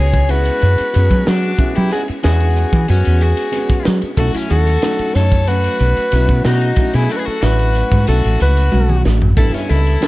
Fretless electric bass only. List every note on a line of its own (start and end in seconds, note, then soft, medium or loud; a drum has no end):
0.00 0.49 C#2 medium
0.63 0.76 F#2 medium
0.80 muted fretless electric bass stroke soft
0.96 1.09 F#2 medium
1.11 1.23 F#3 medium
1.27 1.53 F#3 medium
1.77 1.89 F#3 medium
2.09 muted fretless electric bass stroke soft
2.25 2.64 E2 medium
2.73 2.85 E3 medium
2.89 3.03 F#2 medium
3.07 3.32 E2 medium
3.70 muted fretless electric bass stroke soft
3.87 4.00 F#3 medium
4.03 muted fretless electric bass stroke soft
4.18 4.31 B1 medium
4.34 muted fretless electric bass stroke soft
4.50 4.76 D#2 medium
4.99 muted fretless electric bass stroke soft
5.15 5.67 F#2 medium
5.80 5.94 B1 medium
6.13 6.26 B1 medium
6.29 6.42 B2 medium
6.45 6.71 B2 medium
6.94 7.07 B2 medium
7.27 muted fretless electric bass stroke soft
7.42 7.82 A1 medium
7.92 8.04 G#2 medium
8.08 8.21 B1 medium
8.25 8.37 A1 medium
8.41 8.70 C#2 medium
8.73 9.02 B1 medium
9.05 9.34 A1 medium
9.37 9.51 A1 medium
9.70 9.96 C#2 medium